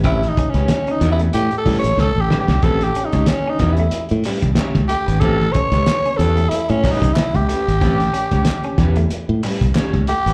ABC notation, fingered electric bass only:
X:1
M:4/4
L:1/16
Q:"Swing 16ths" 1/4=93
K:Amix
V:1 name="Fingered electric bass" clef=bass
A,,,2 z C,, z2 E,,2 A,, z A,, A,,, C,, A,,, z =C,, | A,,,2 z C,, z2 E,,2 z A,, z =C,, z ^C,, z ^G,,, | A,,,2 z C,, z2 E,,2 z A,, z =C,, z ^C,, z ^G,,, | A,,,2 z C,, z2 E,,2 z A,, z =C,, z ^C,, z ^G,,, |]